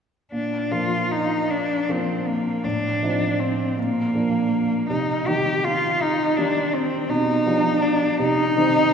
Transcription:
0.32 0.71 A#2 soft
0.32 0.73 D4 soft
0.71 1.84 F3 soft
0.71 1.85 A#3 soft
0.71 1.85 D4 soft
0.71 1.13 F4 soft
1.12 1.52 D#4 soft
1.50 1.92 D4 soft
1.89 2.60 F3 soft
1.89 2.60 A#3 soft
1.89 2.29 C4 soft
1.89 2.60 D4 soft
2.28 2.66 A#3 soft
2.64 3.01 A2 soft
2.64 3.41 D4 soft
3.03 3.73 F3 soft
3.03 3.74 C4 soft
3.03 3.74 D#4 soft
3.40 3.80 C4 soft
3.77 4.14 A#2 soft
3.77 4.89 A#3 medium
4.15 4.86 F3 soft
4.15 4.86 A#3 soft
4.15 4.86 D4 soft
4.90 5.26 C3 soft
4.90 5.29 D#4 soft
5.27 6.34 D#3 soft
5.27 6.34 G3 soft
5.27 6.34 D#4 soft
5.27 5.66 G4 medium
5.64 6.03 F4 medium
6.02 6.38 D#4 medium
6.37 7.05 D#3 soft
6.37 7.05 G3 soft
6.37 6.75 D4 medium
6.37 7.05 D#4 soft
6.74 7.11 C4 medium
7.09 7.44 B2 soft
7.09 7.84 D#4 medium
7.46 8.16 F3 soft
7.46 8.16 G3 soft
7.46 8.16 D4 soft
7.83 8.19 D4 medium
8.18 8.55 C3 soft
8.18 8.93 D#4 medium
8.57 8.93 D#3 soft
8.57 8.93 G3 soft
8.57 8.93 C4 soft

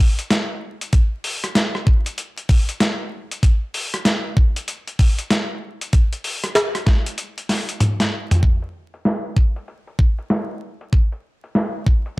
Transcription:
0.19 closed hi-hat medium
0.30 snare loud
0.30 closed hi-hat medium
0.81 closed hi-hat soft
0.93 kick loud
0.93 closed hi-hat medium
1.24 open hi-hat medium
1.44 cross-stick soft
1.44 closed hi-hat medium
1.55 snare loud
1.55 closed hi-hat medium
1.75 cross-stick soft
1.87 kick loud
2.06 closed hi-hat medium
2.18 closed hi-hat medium
2.37 closed hi-hat soft
2.49 kick loud
2.49 open hi-hat medium
2.69 closed hi-hat soft
2.80 snare loud
2.80 closed hi-hat medium
3.31 closed hi-hat soft
3.43 kick loud
3.43 closed hi-hat medium
3.74 open hi-hat medium
3.94 cross-stick medium
3.94 closed hi-hat medium
4.05 snare loud
4.05 closed hi-hat medium
4.37 kick medium
4.56 closed hi-hat medium
4.68 closed hi-hat medium
4.88 closed hi-hat soft
4.99 kick loud
4.99 open hi-hat medium
5.19 closed hi-hat soft
5.30 snare loud
5.30 closed hi-hat medium
5.81 closed hi-hat soft
5.93 kick loud
5.93 closed hi-hat medium
6.13 closed hi-hat soft
6.24 open hi-hat medium
6.44 cross-stick medium
6.44 closed hi-hat medium
6.55 snare loud
6.55 closed hi-hat medium
6.75 cross-stick medium
6.75 closed hi-hat soft
6.87 kick loud
6.87 snare medium
7.06 closed hi-hat medium
7.18 closed hi-hat medium
7.38 closed hi-hat soft
7.49 snare medium
7.49 open hi-hat medium
7.69 closed hi-hat medium
7.80 closed hi-hat medium
7.80 mid tom medium
8.00 snare medium
8.00 closed hi-hat soft
8.31 closed hi-hat medium
8.31 mid tom medium
8.43 kick loud
8.43 closed hi-hat medium
8.62 closed hi-hat soft
8.94 closed hi-hat medium
9.05 snare loud
9.05 closed hi-hat medium
9.36 kick medium
9.56 closed hi-hat medium
9.68 closed hi-hat medium
9.87 closed hi-hat soft
9.99 kick loud
10.19 closed hi-hat soft
10.30 snare loud
10.30 closed hi-hat medium
10.81 closed hi-hat medium
10.92 kick loud
10.92 closed hi-hat medium
11.12 closed hi-hat soft
11.44 closed hi-hat soft
11.55 snare loud
11.55 closed hi-hat medium
11.87 kick medium
12.06 closed hi-hat medium

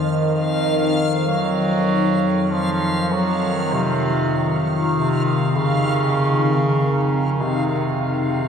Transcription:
0.00 8.48 F2 medium
0.00 8.48 D#3 medium
0.00 8.48 F5 medium
0.04 1.22 D#3 medium
1.27 2.42 F#3 medium
2.42 2.52 F#3 medium
2.50 3.13 F3 medium
3.12 3.74 F#3 medium
3.73 4.67 C3 medium
4.95 5.58 C3 medium
5.57 7.43 C#3 medium
7.41 8.48 C3 medium

